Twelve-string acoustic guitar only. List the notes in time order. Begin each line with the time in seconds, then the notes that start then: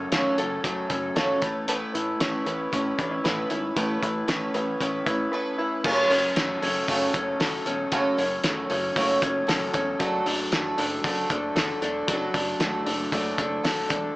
Already playing: F#3 A3 C#4 A4
0.12 F#2 C#3 F#3 A3 C#4 A4
0.39 F#3 A3 C#4 A4
0.64 F#3 A3 C#4 A4
0.90 F#3 A3 C#4 A4
1.16 F#2 C#3 F#3 A3 C#4 A4
1.42 C#4 E4 B4
1.68 A3 C#4 E4 B4
1.94 C#4 E4 B4
2.20 A3 C#4 E4 B4
2.46 C#4 E4 B4
2.72 A3 C#4 E4 B4
2.98 C#4 E4 B4
3.24 A3 C#4 E4 B4
3.50 C#4 E4 B4
3.76 A3 C#4 E4 B4
4.02 C#4 E4 B4
4.28 A3 C#4 E4 B4
4.55 C#4 E4 B4
4.80 A3 C#4 E4 B4
5.06 C#4 E4 B4
5.33 A3 C#4 E4 B4
5.59 C#4 E4 B4
5.84 F#2 C#3 F#3 A3 C#4 A4
6.11 F#3 A3 C#4 A4
6.36 F#3 A3 C#4 A4
6.62 F#3 A3 C#4 A4
6.88 F#2 C#3 F#3 A3 C#4 A4
7.14 F#3 A3 C#4 A4
7.40 F#3 A3 C#4 A4
7.66 F#3 A3 C#4 A4
7.92 F#2 C#3 F#3 A3 C#4 A4
8.17 F#3 A3 C#4 A4
8.44 F#3 A3 C#4 A4
8.70 F#3 A3 C#4 A4
8.96 F#2 C#3 F#3 A3 C#4 A4
9.21 F#3 A3 C#4 A4
9.47 F#3 A3 C#4 A4
9.73 F#3 A3 C#4 A4
10.00 F#3 A3 D4 A4
10.26 A3 D4 A4
10.52 F#3 A3 D4 A4
10.78 A3 D4 A4
11.04 F#3 A3 D4 A4
11.30 A3 D4 A4
11.56 F#3 A3 D4 A4
11.82 A3 D4 A4
12.08 F#3 A3 D4 A4
12.34 A3 D4 A4
12.60 F#3 A3 D4 A4
12.86 A3 D4 A4
13.13 F#3 A3 D4 A4
13.38 A3 D4 A4
13.63 F#3 A3 D4 A4
13.90 A3 D4 A4